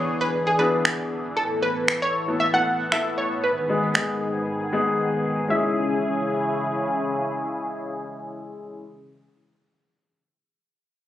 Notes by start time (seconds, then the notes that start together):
Already playing: E2 E3 B3 D4 E4 G#4 C#5, downlifter
0.21 B4
0.47 G#4
0.59 B3 D4 E4 G#4 B4
0.85 finger snap
1.37 A2 B3 A4
1.62 B4
1.88 finger snap
2.02 C#5
2.28 A3 B3 E4 A4
2.40 E5
2.53 A3 B3 E4 A4 F#5
2.92 A3 B3 E4 A4 E5, finger snap
3.18 C#5
3.44 G#2 D#3 G#4 B4
3.69 G#3 B3 D#4 G#4
3.95 G#3 B3 D#4 G#4, finger snap
4.73 G#3 B3 D#4 G#4
5.48 C#3 G#3 C#4 E4 G#4 E5